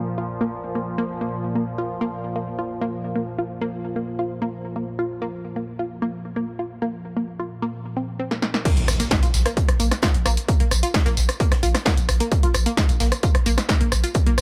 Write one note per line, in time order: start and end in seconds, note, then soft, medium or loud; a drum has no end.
0.00 8.20 A#2 medium
0.00 8.20 F3 medium
0.18 0.23 F4 medium
0.41 0.44 A#3 loud
0.75 0.79 A#3 medium
0.98 1.04 A#3 loud
1.21 1.26 A#3 medium
1.55 1.63 A#3 medium
1.78 1.84 F4 medium
2.01 2.04 A#3 loud
2.36 2.44 A#3 medium
2.59 2.64 F4 medium
2.81 2.85 A#3 loud
3.16 3.24 A#3 medium
3.39 3.44 F4 medium
3.61 3.65 A#3 loud
3.96 4.04 A#3 medium
4.19 4.24 F4 medium
4.42 4.45 A#3 loud
4.76 4.84 A#3 medium
4.99 5.04 F4 medium
5.22 5.25 A#3 loud
5.56 5.64 A#3 medium
5.79 5.84 F4 medium
6.02 6.05 A#3 loud
6.36 6.44 A#3 medium
6.59 6.65 F4 medium
6.82 6.85 A#3 loud
7.17 7.24 A#3 medium
7.40 7.45 F4 medium
7.62 7.66 A#3 loud
7.97 8.00 C4 medium
8.19 8.25 C4 medium
8.31 8.39 A#3 medium
8.31 snare soft
8.42 8.48 A#3 medium
8.42 snare medium
8.54 8.57 A#3 medium
8.54 snare medium
8.65 8.69 A#3 loud
8.65 kick loud
8.65 closed hi-hat medium
8.65 tambourine soft
8.65 crash loud
8.65 impact medium
8.77 8.88 A#1 medium
8.77 closed hi-hat medium
8.77 closed hi-hat soft
8.88 9.00 A#1 loud
8.88 cross-stick medium
8.88 closed hi-hat medium
8.88 open hi-hat loud
8.88 tambourine medium
9.00 9.08 A#3 medium
9.00 closed hi-hat medium
9.00 tambourine soft
9.11 kick loud
9.11 snare loud
9.11 closed hi-hat medium
9.11 tambourine soft
9.23 9.33 A#1 medium
9.23 9.28 F4 medium
9.23 closed hi-hat medium
9.23 tambourine soft
9.34 9.45 A#1 medium
9.34 snare medium
9.34 closed hi-hat medium
9.34 open hi-hat medium
9.34 tambourine medium
9.46 9.49 A#3 loud
9.46 cross-stick medium
9.46 closed hi-hat medium
9.46 tambourine soft
9.57 kick loud
9.57 closed hi-hat medium
9.57 tambourine soft
9.69 9.79 A#1 medium
9.69 cross-stick medium
9.69 closed hi-hat medium
9.79 9.91 A#1 loud
9.79 9.88 A#3 medium
9.79 closed hi-hat medium
9.79 open hi-hat loud
9.79 tambourine medium
9.91 cross-stick medium
9.91 snare medium
9.91 closed hi-hat medium
9.91 tambourine soft
10.02 10.08 F4 medium
10.02 kick loud
10.02 snare loud
10.02 closed hi-hat medium
10.02 tambourine soft
10.14 10.25 A#1 medium
10.14 closed hi-hat medium
10.26 10.37 A#1 loud
10.26 10.29 A#3 loud
10.26 cross-stick medium
10.26 closed hi-hat medium
10.26 open hi-hat medium
10.26 tambourine medium
10.37 closed hi-hat medium
10.37 tambourine soft
10.48 kick loud
10.48 closed hi-hat medium
10.48 tambourine soft
10.60 10.71 A#1 medium
10.60 10.68 A#3 medium
10.60 closed hi-hat medium
10.71 10.83 A#1 loud
10.71 cross-stick medium
10.71 closed hi-hat medium
10.71 open hi-hat loud
10.71 tambourine medium
10.83 10.88 F4 medium
10.83 closed hi-hat medium
10.83 tambourine soft
10.94 kick loud
10.94 snare loud
10.94 closed hi-hat medium
10.94 tambourine soft
11.06 11.16 A#1 medium
11.06 11.09 A#3 loud
11.06 snare medium
11.06 closed hi-hat medium
11.06 tambourine soft
11.17 11.29 A#1 loud
11.17 snare soft
11.17 closed hi-hat medium
11.17 open hi-hat loud
11.17 tambourine medium
11.29 cross-stick medium
11.29 closed hi-hat medium
11.29 tambourine soft
11.40 11.48 A#3 medium
11.40 kick loud
11.40 closed hi-hat medium
11.40 tambourine soft
11.52 11.62 A#1 medium
11.52 cross-stick medium
11.52 snare soft
11.52 closed hi-hat medium
11.63 11.74 A#1 loud
11.63 11.68 F4 medium
11.63 closed hi-hat medium
11.63 open hi-hat loud
11.63 tambourine medium
11.75 cross-stick medium
11.75 snare soft
11.75 snare medium
11.75 closed hi-hat medium
11.75 tambourine soft
11.85 11.89 A#3 loud
11.85 kick loud
11.85 snare loud
11.85 closed hi-hat medium
11.85 tambourine soft
11.97 12.08 A#1 medium
11.97 closed hi-hat medium
11.97 tambourine soft
12.09 12.20 A#1 loud
12.09 cross-stick medium
12.09 closed hi-hat medium
12.09 open hi-hat loud
12.09 tambourine medium
12.20 12.28 A#3 medium
12.20 closed hi-hat medium
12.20 tambourine soft
12.32 kick loud
12.32 closed hi-hat medium
12.32 tambourine soft
12.43 12.54 A#1 medium
12.43 12.49 F4 medium
12.43 closed hi-hat medium
12.43 closed hi-hat soft
12.54 12.66 A#1 loud
12.54 cross-stick medium
12.54 closed hi-hat medium
12.54 open hi-hat loud
12.54 tambourine medium
12.66 12.69 A#3 loud
12.66 closed hi-hat medium
12.66 tambourine soft
12.77 kick loud
12.77 snare loud
12.77 closed hi-hat medium
12.77 tambourine soft
12.89 13.00 A#1 medium
12.89 closed hi-hat medium
12.89 tambourine soft
13.00 13.12 A#1 loud
13.00 13.09 A#3 medium
13.00 snare medium
13.00 closed hi-hat medium
13.00 open hi-hat medium
13.00 tambourine medium
13.12 cross-stick medium
13.12 closed hi-hat medium
13.12 tambourine soft
13.23 13.29 F4 medium
13.23 kick loud
13.23 closed hi-hat medium
13.23 tambourine soft
13.35 13.46 A#1 medium
13.35 cross-stick medium
13.35 closed hi-hat medium
13.46 13.58 A#1 loud
13.46 13.49 A#3 loud
13.46 closed hi-hat medium
13.46 open hi-hat loud
13.46 tambourine medium
13.58 cross-stick medium
13.58 snare medium
13.58 closed hi-hat medium
13.58 tambourine soft
13.69 kick loud
13.69 snare loud
13.69 closed hi-hat medium
13.69 tambourine soft
13.81 13.91 A#1 medium
13.81 13.89 A#3 medium
13.81 closed hi-hat medium
13.92 14.03 A#1 loud
13.92 cross-stick medium
13.92 closed hi-hat medium
13.92 open hi-hat loud
13.92 tambourine medium
14.04 14.09 F4 medium
14.04 closed hi-hat medium
14.04 tambourine soft
14.14 kick loud
14.14 closed hi-hat medium
14.14 tambourine soft
14.26 14.37 A#1 medium
14.26 14.30 A#3 loud
14.26 closed hi-hat medium
14.38 14.41 A#1 loud
14.38 cross-stick medium
14.38 open hi-hat loud
14.38 tambourine medium